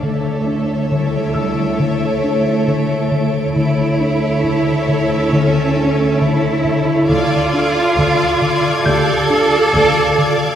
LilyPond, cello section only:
\new Staff \with { instrumentName = "Cello section" } { \time 4/4 \key a \phrygian \tempo 4 = 68 a4 g4 a2 | e'2 cis'4 e'4 | f'2 a'2 | }